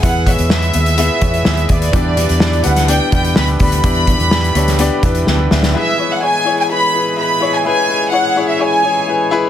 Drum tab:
HH |x-xx-xxxx-xx-xxx|x-xx-xxxx-xx-xox|xxxx-xxxx-xx----|----------------|
SD |----o-------o---|----o--o----o---|----o--o----o-oo|----------------|
BD |o-o-------o---o-|o---------o---o-|o-o-------o-----|----------------|

HH |----------------|
SD |----------------|
BD |----------------|